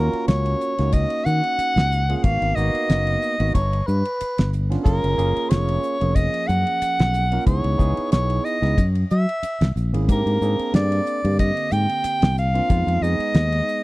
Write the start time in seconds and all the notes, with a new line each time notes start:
Already playing: A#3 C#4 F4 F#4 A#4
0.13 muted fingered electric bass stroke, ride
0.28 C#2 C#5, snare, hi-hat pedal, ride
0.46 ride
0.61 hi-hat pedal
0.78 C#2 A#3 C#4 D#4 F#4, snare, ride
0.92 D#5, kick, hi-hat pedal, ride
1.10 ride
1.25 D#3 F#5, hi-hat pedal
1.44 ride
1.58 muted fingered electric bass stroke, hi-hat pedal, ride
1.76 C#2, snare, ride
1.92 hi-hat pedal
2.09 A#3 C#4 F4 G#4, ride
2.17 F#5
2.23 G#1 A#3 B3 D#4 F#4 F5, kick, hi-hat pedal, ride
2.42 G#1, ride
2.55 G#1 A#3 B3 D#4 F#4 D#5, hi-hat pedal
2.75 ride
2.89 F#1, snare, hi-hat pedal, ride
3.07 ride
3.22 hi-hat pedal
3.39 G#1 A#3 B3 D#4 F#4, ride
3.54 G1 C#5, kick, hi-hat pedal, ride
3.73 ride
3.87 G2 B4, hi-hat pedal
4.05 ride
4.21 muted fingered electric bass stroke, hi-hat pedal, ride
4.38 G1, snare, ride
4.53 hi-hat pedal
4.70 B3 C#4 D4 F4, snare, ride
4.84 F#1 A#3 C#4 F4 G#4 A#4, kick, hi-hat pedal, ride
5.04 F#1, ride
5.17 F#1 A#3 C#4 F4 G#4, hi-hat pedal
5.36 muted fingered electric bass stroke, ride
5.50 F1 C#5, snare, hi-hat pedal, ride
5.68 ride
5.83 hi-hat pedal
6.00 F1 F3 A#3 C#4 G#4, ride
6.15 D#5, kick, hi-hat pedal, ride
6.34 ride
6.48 F#2 F#5, hi-hat pedal
6.67 ride
6.82 muted fingered electric bass stroke, hi-hat pedal, ride
6.99 B1, snare, ride
7.14 hi-hat pedal
7.32 A#3 C#4 F4 A#4, ride
7.46 C#2 B3 D#4 E4 G#4 C#5, kick, hi-hat pedal, ride
7.64 C#2, ride
7.78 C#2 B3 D#4 E4 G#4, kick, hi-hat pedal
7.97 ride
8.12 B1 C#5, snare, hi-hat pedal, ride
8.30 ride
8.44 D#5, hi-hat pedal
8.61 C#2 B3 D#4 E4 G#4, snare, ride
8.78 F#2, kick, hi-hat pedal, ride
8.95 ride
9.10 F#3 E5, hi-hat pedal
9.29 ride
9.43 muted fingered electric bass stroke, hi-hat pedal, ride
9.61 C2, snare, ride
9.76 A#1, hi-hat pedal
9.93 G#1 A#3 C#4 E4 G#4, ride
10.08 G#2 A#3 C4 D4 G4 A#4, kick, hi-hat pedal, ride
10.26 G#2, ride
10.41 G#2 A#3 C4 D4 G#4, hi-hat pedal
10.59 muted fingered electric bass stroke, ride
10.74 G2 D5, snare, hi-hat pedal, ride
10.92 ride
11.06 hi-hat pedal
11.24 G2 D3 A#3 C4 G4, ride
11.39 D#5, kick, hi-hat pedal, ride
11.57 ride
11.71 G#2 G5, hi-hat pedal
11.89 ride
12.04 muted fingered electric bass stroke, hi-hat pedal, ride
12.22 C2, snare, ride
12.37 F5, hi-hat pedal
12.54 A#3 C4 D4 F4, ride
12.69 F2 G#3 B3 D#4 F4, kick, hi-hat pedal, ride
12.87 F2, ride
13.01 F2 G#3 B3 D#4 G#4 D#5, hi-hat pedal
13.19 muted fingered electric bass stroke, ride
13.34 D#2, snare, hi-hat pedal, ride
13.52 ride
13.68 hi-hat pedal